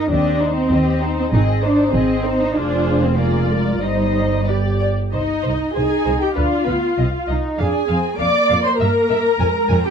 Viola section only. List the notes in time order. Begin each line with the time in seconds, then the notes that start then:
Already playing: D#4
0.10 C4
0.40 D#4
0.71 C4
1.02 D#4
1.33 C4
1.63 D#4
1.94 C4
2.24 D#4
2.55 F4
3.18 F4
3.83 D#4
4.48 G4
5.12 D#4
5.75 G#4
6.22 G4
6.37 F4
7.59 G#4
8.20 D5
8.66 C5
8.79 A#4
9.86 G4